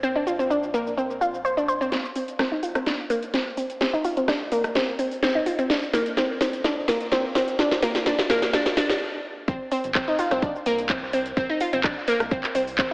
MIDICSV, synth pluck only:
0, 0, Header, 1, 2, 480
1, 0, Start_track
1, 0, Key_signature, -3, "minor"
1, 0, Tempo, 472441
1, 30, Time_signature, 4, 2, 24, 8
1, 13141, End_track
2, 0, Start_track
2, 0, Title_t, "Synth pluck"
2, 0, Program_c, 0, 84
2, 32, Note_on_c, 0, 60, 96
2, 87, Note_off_c, 0, 60, 0
2, 158, Note_on_c, 0, 62, 74
2, 187, Note_off_c, 0, 62, 0
2, 272, Note_on_c, 0, 65, 74
2, 304, Note_off_c, 0, 65, 0
2, 399, Note_on_c, 0, 60, 73
2, 447, Note_off_c, 0, 60, 0
2, 512, Note_on_c, 0, 62, 82
2, 566, Note_off_c, 0, 62, 0
2, 751, Note_on_c, 0, 58, 95
2, 806, Note_off_c, 0, 58, 0
2, 991, Note_on_c, 0, 60, 79
2, 1074, Note_off_c, 0, 60, 0
2, 1230, Note_on_c, 0, 65, 72
2, 1286, Note_off_c, 0, 65, 0
2, 1470, Note_on_c, 0, 72, 82
2, 1553, Note_off_c, 0, 72, 0
2, 1597, Note_on_c, 0, 62, 71
2, 1671, Note_off_c, 0, 62, 0
2, 1711, Note_on_c, 0, 72, 73
2, 1766, Note_off_c, 0, 72, 0
2, 1839, Note_on_c, 0, 60, 74
2, 1912, Note_off_c, 0, 60, 0
2, 1951, Note_on_c, 0, 60, 78
2, 2034, Note_off_c, 0, 60, 0
2, 2191, Note_on_c, 0, 60, 76
2, 2246, Note_off_c, 0, 60, 0
2, 2431, Note_on_c, 0, 60, 102
2, 2486, Note_off_c, 0, 60, 0
2, 2557, Note_on_c, 0, 63, 73
2, 2587, Note_off_c, 0, 63, 0
2, 2671, Note_on_c, 0, 65, 73
2, 2704, Note_off_c, 0, 65, 0
2, 2797, Note_on_c, 0, 60, 74
2, 2847, Note_off_c, 0, 60, 0
2, 2911, Note_on_c, 0, 62, 79
2, 2966, Note_off_c, 0, 62, 0
2, 3150, Note_on_c, 0, 58, 96
2, 3206, Note_off_c, 0, 58, 0
2, 3391, Note_on_c, 0, 60, 80
2, 3474, Note_off_c, 0, 60, 0
2, 3631, Note_on_c, 0, 60, 74
2, 3686, Note_off_c, 0, 60, 0
2, 3870, Note_on_c, 0, 60, 97
2, 3926, Note_off_c, 0, 60, 0
2, 3998, Note_on_c, 0, 63, 77
2, 4027, Note_off_c, 0, 63, 0
2, 4110, Note_on_c, 0, 65, 75
2, 4143, Note_off_c, 0, 65, 0
2, 4237, Note_on_c, 0, 60, 74
2, 4287, Note_off_c, 0, 60, 0
2, 4350, Note_on_c, 0, 62, 82
2, 4406, Note_off_c, 0, 62, 0
2, 4590, Note_on_c, 0, 58, 100
2, 4646, Note_off_c, 0, 58, 0
2, 4831, Note_on_c, 0, 60, 82
2, 4914, Note_off_c, 0, 60, 0
2, 5070, Note_on_c, 0, 60, 75
2, 5125, Note_off_c, 0, 60, 0
2, 5310, Note_on_c, 0, 60, 103
2, 5366, Note_off_c, 0, 60, 0
2, 5437, Note_on_c, 0, 63, 76
2, 5467, Note_off_c, 0, 63, 0
2, 5549, Note_on_c, 0, 65, 75
2, 5583, Note_off_c, 0, 65, 0
2, 5676, Note_on_c, 0, 60, 78
2, 5726, Note_off_c, 0, 60, 0
2, 5788, Note_on_c, 0, 62, 74
2, 5845, Note_off_c, 0, 62, 0
2, 6029, Note_on_c, 0, 58, 94
2, 6085, Note_off_c, 0, 58, 0
2, 6270, Note_on_c, 0, 60, 79
2, 6353, Note_off_c, 0, 60, 0
2, 6510, Note_on_c, 0, 60, 68
2, 6566, Note_off_c, 0, 60, 0
2, 6750, Note_on_c, 0, 62, 77
2, 6805, Note_off_c, 0, 62, 0
2, 6990, Note_on_c, 0, 58, 94
2, 7046, Note_off_c, 0, 58, 0
2, 7230, Note_on_c, 0, 60, 83
2, 7313, Note_off_c, 0, 60, 0
2, 7470, Note_on_c, 0, 60, 72
2, 7526, Note_off_c, 0, 60, 0
2, 7710, Note_on_c, 0, 62, 82
2, 7766, Note_off_c, 0, 62, 0
2, 7950, Note_on_c, 0, 58, 101
2, 8006, Note_off_c, 0, 58, 0
2, 8190, Note_on_c, 0, 62, 84
2, 8246, Note_off_c, 0, 62, 0
2, 8431, Note_on_c, 0, 58, 100
2, 8486, Note_off_c, 0, 58, 0
2, 8671, Note_on_c, 0, 62, 83
2, 8726, Note_off_c, 0, 62, 0
2, 8912, Note_on_c, 0, 62, 83
2, 8967, Note_off_c, 0, 62, 0
2, 9631, Note_on_c, 0, 60, 81
2, 9714, Note_off_c, 0, 60, 0
2, 9872, Note_on_c, 0, 60, 77
2, 9926, Note_off_c, 0, 60, 0
2, 10112, Note_on_c, 0, 60, 105
2, 10167, Note_off_c, 0, 60, 0
2, 10239, Note_on_c, 0, 63, 79
2, 10268, Note_off_c, 0, 63, 0
2, 10353, Note_on_c, 0, 65, 75
2, 10385, Note_off_c, 0, 65, 0
2, 10479, Note_on_c, 0, 60, 78
2, 10528, Note_off_c, 0, 60, 0
2, 10592, Note_on_c, 0, 62, 80
2, 10647, Note_off_c, 0, 62, 0
2, 10832, Note_on_c, 0, 58, 102
2, 10887, Note_off_c, 0, 58, 0
2, 11072, Note_on_c, 0, 60, 86
2, 11154, Note_off_c, 0, 60, 0
2, 11311, Note_on_c, 0, 60, 77
2, 11366, Note_off_c, 0, 60, 0
2, 11551, Note_on_c, 0, 60, 102
2, 11606, Note_off_c, 0, 60, 0
2, 11680, Note_on_c, 0, 63, 80
2, 11708, Note_off_c, 0, 63, 0
2, 11792, Note_on_c, 0, 65, 78
2, 11825, Note_off_c, 0, 65, 0
2, 11919, Note_on_c, 0, 60, 78
2, 11967, Note_off_c, 0, 60, 0
2, 12032, Note_on_c, 0, 62, 86
2, 12087, Note_off_c, 0, 62, 0
2, 12271, Note_on_c, 0, 58, 101
2, 12326, Note_off_c, 0, 58, 0
2, 12511, Note_on_c, 0, 60, 83
2, 12594, Note_off_c, 0, 60, 0
2, 12751, Note_on_c, 0, 60, 76
2, 12806, Note_off_c, 0, 60, 0
2, 12990, Note_on_c, 0, 60, 105
2, 13046, Note_off_c, 0, 60, 0
2, 13141, End_track
0, 0, End_of_file